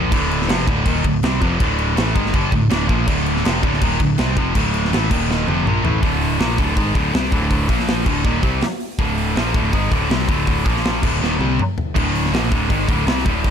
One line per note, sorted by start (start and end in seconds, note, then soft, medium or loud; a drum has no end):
0.00 0.10 A#1 loud
0.00 0.12 A#2 medium
0.00 0.12 F3 loud
0.00 0.12 A#3 loud
0.12 0.46 D1 medium
0.12 0.48 D2 medium
0.12 0.49 A2 medium
0.12 0.49 D3 loud
0.12 kick loud
0.12 crash loud
0.31 crash medium
0.42 snare soft
0.48 0.66 F1 medium
0.48 0.67 F2 medium
0.48 0.67 C3 loud
0.48 0.67 F3 loud
0.48 snare loud
0.48 crash medium
0.67 0.85 D1 loud
0.67 0.85 D2 medium
0.67 0.85 A2 loud
0.67 0.86 D3 loud
0.67 kick loud
0.67 crash medium
0.86 1.03 D#1 loud
0.86 1.04 D#2 loud
0.86 1.04 A#2 loud
0.86 1.04 D#3 loud
0.86 kick loud
0.86 crash medium
1.04 1.21 D1 medium
1.04 1.19 D2 medium
1.04 1.20 A2 medium
1.04 kick loud
1.04 crash medium
1.23 1.40 C2 loud
1.23 1.40 C3 medium
1.23 1.41 G3 loud
1.23 1.41 C4 loud
1.23 snare loud
1.23 crash medium
1.41 1.59 F1 loud
1.41 1.59 F2 medium
1.41 1.59 C3 medium
1.41 1.59 F3 loud
1.41 kick loud
1.41 crash medium
1.59 1.94 D1 medium
1.59 1.95 D2 medium
1.59 1.94 A2 medium
1.59 1.96 D3 loud
1.59 kick loud
1.59 crash medium
1.79 crash medium
1.96 2.14 A1 loud
1.96 2.14 A2 medium
1.96 2.14 E3 medium
1.96 2.15 A3 loud
1.96 snare loud
1.96 crash medium
2.14 2.33 G#1 loud
2.14 2.33 G#2 medium
2.14 2.33 D#3 medium
2.14 2.33 G#3 medium
2.14 kick loud
2.14 crash medium
2.26 snare soft
2.34 2.51 G1 loud
2.34 2.51 G2 loud
2.34 2.52 D3 loud
2.34 2.52 G3 loud
2.34 kick loud
2.34 crash medium
2.52 2.69 D1 medium
2.52 2.67 D2 medium
2.52 2.67 A2 medium
2.52 kick medium
2.52 crash medium
2.70 2.88 D1 loud
2.70 2.87 D2 loud
2.70 2.87 A2 loud
2.70 2.88 D3 loud
2.70 snare loud
2.70 crash medium
2.88 3.06 A#1 loud
2.88 3.06 A#2 medium
2.88 3.06 F3 medium
2.88 3.07 A#3 loud
2.88 kick loud
2.88 crash medium
3.07 3.42 D1 loud
3.07 3.44 D2 medium
3.07 3.44 A2 medium
3.07 3.44 D3 loud
3.07 kick loud
3.07 crash medium
3.26 crash medium
3.37 snare soft
3.44 3.62 F1 loud
3.44 3.62 F2 loud
3.44 3.62 C3 loud
3.44 3.63 F3 loud
3.44 snare loud
3.44 crash medium
3.62 3.80 D1 loud
3.62 3.81 D2 medium
3.62 3.81 A2 medium
3.62 3.81 D3 loud
3.62 kick loud
3.62 crash medium
3.74 snare soft
3.81 3.99 D#1 medium
3.81 3.99 D#2 loud
3.81 4.00 A#2 loud
3.81 4.00 D#3 loud
3.81 kick loud
3.81 crash medium
4.00 4.17 D1 medium
4.00 4.15 D2 medium
4.00 4.15 A2 medium
4.00 kick medium
4.00 crash medium
4.18 4.36 C2 loud
4.18 4.36 C3 loud
4.18 4.37 G3 loud
4.18 4.37 C4 loud
4.18 snare loud
4.18 crash medium
4.37 4.54 F1 loud
4.37 4.55 F2 medium
4.37 4.55 C3 medium
4.37 4.55 F3 loud
4.37 kick loud
4.37 crash medium
4.55 4.90 D1 medium
4.55 4.92 D2 loud
4.55 4.91 A2 medium
4.55 4.92 D3 loud
4.55 kick loud
4.55 crash medium
4.74 crash medium
4.85 snare soft
4.92 5.09 A1 medium
4.92 5.10 A2 loud
4.92 5.10 E3 loud
4.92 5.10 A3 loud
4.92 snare loud
4.92 crash medium
5.10 5.45 D#1 medium
5.10 5.47 D#2 medium
5.10 5.47 A#2 medium
5.10 5.47 D#3 loud
5.10 kick loud
5.10 crash loud
5.31 snare medium
5.47 5.65 F1 medium
5.47 5.65 F2 medium
5.47 5.66 C3 loud
5.47 5.66 F3 loud
5.47 high tom medium
5.66 5.83 A#1 loud
5.66 5.84 A#2 loud
5.66 5.84 F3 medium
5.66 5.84 A#3 loud
5.66 mid tom medium
5.84 6.02 A1 medium
5.84 6.01 A2 medium
5.84 6.02 E3 medium
5.84 6.02 A3 loud
5.84 floor tom medium
6.02 6.37 D1 medium
6.02 6.39 D2 medium
6.02 6.39 A2 medium
6.02 6.39 D3 medium
6.02 kick loud
6.02 open hi-hat medium
6.21 open hi-hat medium
6.39 6.57 A#1 loud
6.39 6.57 A#2 medium
6.39 6.58 F3 loud
6.39 6.58 A#3 loud
6.39 snare loud
6.39 open hi-hat medium
6.58 6.76 D1 loud
6.58 6.76 D2 medium
6.58 6.76 A2 medium
6.58 6.76 D3 loud
6.58 kick loud
6.58 open hi-hat medium
6.76 6.94 G#1 medium
6.76 6.94 G#2 medium
6.76 6.95 D#3 loud
6.76 6.95 G#3 loud
6.76 kick loud
6.76 open hi-hat medium
6.95 7.12 D1 medium
6.95 7.13 D2 medium
6.95 7.13 A2 medium
6.95 7.13 D3 loud
6.95 kick loud
6.95 open hi-hat medium
7.14 7.31 C2 medium
7.14 7.32 C3 medium
7.14 7.32 G3 medium
7.14 7.32 C4 loud
7.14 snare loud
7.14 open hi-hat medium
7.24 snare soft
7.32 7.67 D1 medium
7.32 7.68 D2 medium
7.32 7.69 A2 medium
7.32 7.69 D3 loud
7.32 kick loud
7.32 open hi-hat medium
7.51 kick loud
7.51 open hi-hat medium
7.69 8.03 A#1 medium
7.69 8.06 A#2 medium
7.69 8.06 F3 medium
7.69 8.06 A#3 medium
7.69 kick loud
7.69 open hi-hat medium
7.79 snare soft
7.88 snare loud
7.88 open hi-hat medium
8.06 8.23 D1 loud
8.06 8.24 D2 medium
8.06 8.24 A2 medium
8.06 8.25 D3 loud
8.06 kick loud
8.06 crash medium
8.24 8.42 D#1 loud
8.24 8.42 D#2 loud
8.24 8.43 A#2 loud
8.24 8.43 D#3 loud
8.24 kick loud
8.43 8.60 C2 loud
8.43 8.61 C3 medium
8.43 8.61 G3 loud
8.43 8.62 C4 medium
8.43 kick loud
8.43 open hi-hat medium
8.61 snare loud
8.61 open hi-hat medium
8.80 open hi-hat medium
8.98 9.33 D1 loud
8.98 9.36 D2 medium
8.98 9.36 A2 medium
8.98 9.36 D3 medium
8.98 kick loud
8.98 open hi-hat medium
9.18 open hi-hat medium
9.36 9.53 A#1 loud
9.36 9.54 A#2 medium
9.36 9.54 F3 medium
9.36 9.55 A#3 loud
9.36 snare loud
9.36 open hi-hat medium
9.54 9.72 D1 medium
9.54 9.72 D2 medium
9.54 9.73 A2 loud
9.54 9.73 D3 loud
9.54 kick loud
9.54 open hi-hat medium
9.73 9.90 G#1 medium
9.73 9.91 G#2 loud
9.73 9.91 D#3 loud
9.73 9.91 G#3 loud
9.73 kick loud
9.73 open hi-hat medium
9.91 10.09 D1 medium
9.91 10.10 D2 medium
9.91 10.10 A2 loud
9.91 10.10 D3 loud
9.91 kick loud
9.91 open hi-hat medium
10.10 10.27 C2 loud
10.10 10.28 C3 medium
10.10 10.28 G3 medium
10.10 10.29 C4 loud
10.10 snare loud
10.10 open hi-hat medium
10.21 snare soft
10.28 10.63 D1 medium
10.28 10.65 D2 medium
10.28 10.66 A2 loud
10.28 10.66 D3 loud
10.28 kick loud
10.28 open hi-hat medium
10.47 kick loud
10.47 open hi-hat medium
10.65 11.00 A#1 medium
10.65 11.02 A#2 medium
10.65 11.02 F3 loud
10.65 11.02 A#3 medium
10.65 kick loud
10.65 open hi-hat medium
10.77 snare soft
10.84 snare loud
10.84 open hi-hat medium
11.03 11.20 D1 medium
11.03 11.21 D2 medium
11.03 11.21 A2 loud
11.03 11.21 D3 loud
11.03 kick loud
11.03 crash loud
11.21 11.39 D#1 medium
11.21 11.39 D#2 loud
11.21 11.39 A#2 loud
11.21 11.40 D#3 loud
11.21 snare medium
11.39 11.57 C2 medium
11.39 11.58 C3 loud
11.39 11.58 G3 medium
11.39 11.58 C4 loud
11.39 high tom medium
11.59 mid tom medium
11.78 floor tom medium
11.95 12.31 D1 medium
11.95 12.31 D2 medium
11.95 12.32 A2 medium
11.95 12.32 D3 loud
11.95 kick loud
11.95 crash loud
12.15 open hi-hat medium
12.26 snare soft
12.32 12.50 A#1 loud
12.32 12.50 A#2 medium
12.32 12.50 F3 loud
12.32 12.51 A#3 loud
12.32 snare loud
12.32 open hi-hat medium
12.50 12.69 D1 medium
12.50 12.69 D2 medium
12.50 12.69 A2 medium
12.50 12.69 D3 loud
12.50 kick loud
12.50 open hi-hat medium
12.70 12.87 G#1 loud
12.70 12.88 G#2 medium
12.70 12.88 D#3 loud
12.70 12.88 G#3 loud
12.70 kick loud
12.70 open hi-hat medium
12.88 13.06 D1 medium
12.88 13.06 D2 medium
12.88 13.06 A2 loud
12.88 13.07 D3 loud
12.88 kick loud
12.88 open hi-hat medium
13.06 13.24 C2 loud
13.06 13.25 C3 medium
13.06 13.25 G3 loud
13.06 13.25 C4 loud
13.06 snare loud
13.06 open hi-hat medium
13.18 snare soft
13.25 13.51 D1 loud
13.25 13.51 D2 medium
13.25 13.51 A2 medium
13.25 13.51 D3 loud
13.25 kick loud
13.25 open hi-hat medium
13.44 kick loud
13.44 open hi-hat loud